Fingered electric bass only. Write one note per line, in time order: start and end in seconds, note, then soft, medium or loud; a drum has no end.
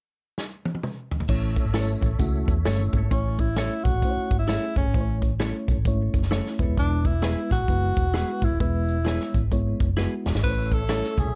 1.29 1.58 A1 loud
1.65 1.94 G#1 medium
2.02 2.17 A1 medium
2.20 2.42 C#2 medium
2.48 2.62 E2 medium
2.66 2.87 G1 medium
2.93 3.08 G#1 medium
3.11 3.68 A1 medium
3.85 3.92 B1 medium
3.94 4.01 A1 medium
4.17 muted fingered electric bass stroke soft
4.31 4.56 G#1 medium
4.76 4.84 F#1 medium
4.86 4.93 G#1 medium
4.94 5.51 A1 loud
5.68 5.75 B1 medium
5.77 5.84 A1 medium
5.85 6.07 G#1 medium
6.14 6.39 F#1 medium
6.59 6.66 E1 medium
6.69 6.76 D#1 medium
6.77 7.34 E1 loud
7.51 7.58 A1 medium
7.60 7.67 G#1 medium
7.69 7.91 F#1 medium
7.97 8.22 E1 medium
8.42 8.49 G#1 medium
8.51 8.59 D#1 medium
8.60 9.17 E1 loud
9.34 9.41 A1 medium
9.43 9.72 G#1 medium
9.80 10.05 F#1 medium
10.26 10.33 E1 medium
10.35 10.42 G#1 medium
11.18 11.25 C#2 medium
11.27 11.34 B1 medium